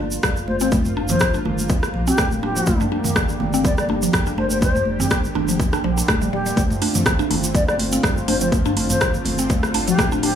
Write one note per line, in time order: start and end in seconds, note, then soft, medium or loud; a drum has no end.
0.00 0.18 G1 medium
0.00 10.35 D3 medium
0.00 6.53 G3 medium
0.00 6.53 A#3 medium
0.00 0.11 D4 medium
0.00 2.63 F4 medium
0.11 shaker medium
0.23 1.16 G1 loud
0.23 0.36 G3 medium
0.23 kick loud
0.23 cross-stick loud
0.23 mid tom medium
0.23 muted conga soft
0.23 shaker medium
0.37 shaker soft
0.48 0.56 C5 medium
0.48 muted conga medium
0.48 high conga medium
0.60 0.71 C4 loud
0.60 0.68 C5 medium
0.60 shaker medium
0.72 0.84 G3 loud
0.72 kick loud
0.72 high conga loud
0.72 shaker medium
0.85 mid tom medium
0.85 muted conga soft
0.85 shaker soft
0.97 1.09 D4 loud
0.97 high conga medium
1.09 1.20 F3 medium
1.09 1.31 C5 medium
1.09 mid tom medium
1.09 muted conga soft
1.09 low conga loud
1.09 shaker medium
1.20 1.39 G1 loud
1.20 kick loud
1.20 cross-stick loud
1.20 shaker medium
1.34 1.44 D4 loud
1.34 muted conga medium
1.34 shaker soft
1.45 1.89 G1 medium
1.45 1.57 D4 medium
1.45 high conga medium
1.45 low conga medium
1.59 shaker medium
1.69 1.82 G3 medium
1.69 kick loud
1.69 muted conga soft
1.69 shaker medium
1.83 cross-stick medium
1.83 shaker soft
1.94 2.12 A#1 medium
1.94 muted conga soft
2.07 2.17 C4 loud
2.07 2.29 G4 medium
2.07 shaker medium
2.18 2.62 D1 medium
2.18 2.30 G3 loud
2.18 kick loud
2.18 cross-stick loud
2.18 muted conga soft
2.18 high conga loud
2.18 shaker medium
2.32 shaker soft
2.43 2.55 D4 loud
2.43 2.81 G4 medium
2.43 muted conga soft
2.56 2.66 F3 medium
2.56 shaker medium
2.66 2.77 G1 loud
2.66 6.53 G4 medium
2.66 kick loud
2.66 high conga loud
2.66 shaker medium
2.80 2.91 D4 loud
2.80 mid tom medium
2.80 muted conga soft
2.80 shaker soft
2.92 3.04 D4 medium
2.92 high conga medium
3.04 mid tom medium
3.04 muted conga soft
3.04 low conga loud
3.04 shaker medium
3.16 3.34 G1 loud
3.16 3.29 G3 medium
3.16 kick loud
3.16 cross-stick loud
3.16 shaker medium
3.29 muted conga soft
3.29 shaker soft
3.40 4.08 G1 medium
3.40 high conga medium
3.40 low conga medium
3.54 3.64 C4 loud
3.54 shaker medium
3.64 3.77 G3 loud
3.64 3.73 D5 medium
3.64 kick loud
3.64 muted conga soft
3.64 high conga medium
3.64 shaker medium
3.78 3.85 D5 medium
3.78 cross-stick medium
3.78 shaker soft
3.89 4.01 D4 loud
3.89 muted conga medium
3.89 high conga medium
4.02 4.13 F3 medium
4.02 shaker medium
4.13 5.06 G1 loud
4.13 kick loud
4.13 cross-stick loud
4.13 mid tom medium
4.13 muted conga soft
4.13 shaker medium
4.26 4.37 D4 loud
4.26 shaker soft
4.38 4.50 D4 medium
4.38 4.46 C5 medium
4.38 muted conga soft
4.38 high conga medium
4.50 4.58 C5 medium
4.50 shaker medium
4.61 4.75 G3 medium
4.61 4.84 C5 medium
4.61 kick loud
4.61 high conga loud
4.61 shaker medium
4.75 mid tom medium
4.75 muted conga soft
4.75 shaker soft
4.85 high conga medium
5.00 5.10 C4 medium
5.00 5.07 G4 medium
5.00 mid tom medium
5.00 muted conga soft
5.00 low conga medium
5.00 shaker medium
5.11 5.29 G1 loud
5.11 5.23 G3 loud
5.11 5.19 G4 medium
5.11 kick loud
5.11 cross-stick loud
5.11 shaker medium
5.24 muted conga soft
5.24 shaker soft
5.35 5.79 G1 medium
5.35 5.47 D4 loud
5.35 high conga medium
5.35 low conga medium
5.48 5.59 F3 medium
5.48 shaker medium
5.60 kick loud
5.60 shaker medium
5.73 5.83 D4 loud
5.73 cross-stick medium
5.73 shaker soft
5.84 6.02 A#1 medium
5.84 5.91 F3 loud
5.84 muted conga soft
5.98 6.08 D4 medium
5.98 shaker medium
6.08 6.52 D1 medium
6.08 6.20 G3 medium
6.08 kick loud
6.08 cross-stick loud
6.08 muted conga soft
6.08 high conga loud
6.08 shaker medium
6.22 6.32 G3 medium
6.22 shaker soft
6.33 6.40 G3 medium
6.33 6.62 G4 medium
6.33 muted conga soft
6.46 6.52 G3 medium
6.46 shaker medium
6.56 6.67 G1 loud
6.56 6.69 G3 loud
6.56 10.35 A3 medium
6.56 10.35 C4 medium
6.56 10.35 F4 medium
6.56 kick loud
6.56 closed hi-hat soft
6.56 high conga loud
6.56 shaker medium
6.70 mid tom medium
6.70 muted conga medium
6.70 shaker soft
6.82 6.94 D4 loud
6.82 open hi-hat medium
6.82 high conga medium
6.95 7.05 F3 medium
6.95 closed hi-hat medium
6.95 mid tom medium
6.95 muted conga soft
6.95 low conga medium
6.95 shaker medium
7.06 7.24 G1 loud
7.06 kick loud
7.06 cross-stick loud
7.06 closed hi-hat soft
7.06 shaker medium
7.19 7.29 D4 loud
7.19 muted conga soft
7.19 shaker soft
7.30 7.99 G1 medium
7.30 7.43 D4 medium
7.30 open hi-hat medium
7.30 high conga medium
7.30 low conga medium
7.44 closed hi-hat medium
7.44 shaker medium
7.54 7.68 G3 medium
7.54 7.63 D5 medium
7.54 kick loud
7.54 closed hi-hat soft
7.54 muted conga soft
7.54 high conga medium
7.54 shaker medium
7.68 7.75 D5 medium
7.68 cross-stick medium
7.68 shaker soft
7.79 open hi-hat medium
7.79 muted conga medium
7.79 high conga medium
7.92 8.03 C4 loud
7.92 closed hi-hat medium
7.92 shaker medium
8.03 8.96 G1 loud
8.03 8.16 G3 loud
8.03 kick loud
8.03 cross-stick loud
8.03 closed hi-hat soft
8.03 mid tom medium
8.03 shaker medium
8.17 shaker soft
8.28 8.40 D4 loud
8.28 8.36 C5 medium
8.28 open hi-hat medium
8.28 muted conga medium
8.28 high conga medium
8.40 8.51 F3 medium
8.40 8.48 C5 medium
8.40 closed hi-hat medium
8.40 shaker medium
8.52 kick loud
8.52 closed hi-hat soft
8.52 high conga loud
8.52 shaker medium
8.65 8.76 D4 loud
8.65 mid tom medium
8.65 muted conga medium
8.65 shaker soft
8.76 8.89 D4 medium
8.76 open hi-hat medium
8.76 high conga medium
8.90 9.11 C5 medium
8.90 closed hi-hat medium
8.90 mid tom medium
8.90 muted conga soft
8.90 low conga medium
8.90 shaker medium
9.01 9.19 G1 loud
9.01 9.14 G3 medium
9.01 kick loud
9.01 cross-stick loud
9.01 closed hi-hat soft
9.01 shaker medium
9.14 muted conga medium
9.14 shaker soft
9.25 9.69 G1 medium
9.25 open hi-hat medium
9.25 high conga medium
9.25 low conga medium
9.38 9.49 C4 loud
9.38 closed hi-hat medium
9.38 shaker medium
9.50 9.62 G3 loud
9.50 kick loud
9.50 closed hi-hat soft
9.50 muted conga soft
9.50 shaker medium
9.63 cross-stick medium
9.63 shaker soft
9.74 9.93 G1 medium
9.74 9.86 D4 loud
9.74 open hi-hat medium
9.74 muted conga soft
9.87 9.98 F3 medium
9.87 10.09 G4 medium
9.87 closed hi-hat medium
9.87 shaker medium
9.98 10.35 D1 medium
9.98 kick loud
9.98 cross-stick loud
9.98 closed hi-hat soft
9.98 muted conga soft
9.98 high conga loud
9.98 shaker medium
10.12 10.22 D4 loud
10.12 shaker soft
10.23 10.35 D4 medium
10.23 10.35 G4 loud
10.23 open hi-hat medium
10.23 muted conga medium